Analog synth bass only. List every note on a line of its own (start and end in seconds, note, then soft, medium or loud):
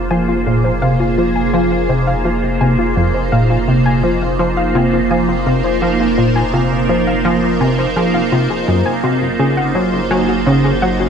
0.11 0.36 F3 medium
0.46 0.72 A#2 medium
0.82 1.16 C3 medium
1.18 1.43 F3 medium
1.53 1.87 F3 loud
1.89 2.15 C3 medium
2.25 2.50 F3 medium
2.61 2.76 C3 medium
2.96 3.12 F2 medium
3.32 3.57 A#2 medium
3.68 4.02 C3 medium
4.04 4.29 F3 medium
4.39 4.73 F3 medium
4.75 5.00 C3 loud
5.11 5.36 F3 medium
5.46 5.62 C3 medium
5.82 6.07 F3 medium
6.18 6.43 A#2 medium
6.54 6.87 C3 medium
6.89 7.15 F3 medium
7.25 7.59 F3 loud
7.61 7.86 C3 medium
7.96 8.22 F3 medium
8.32 8.47 C3 medium
8.68 8.83 F#2 medium
9.03 9.29 C3 medium
9.39 9.73 C#3 medium
9.75 10.00 F#3 medium
10.11 10.45 F#3 loud
10.46 10.72 C#3 loud
10.82 11.07 F#3 medium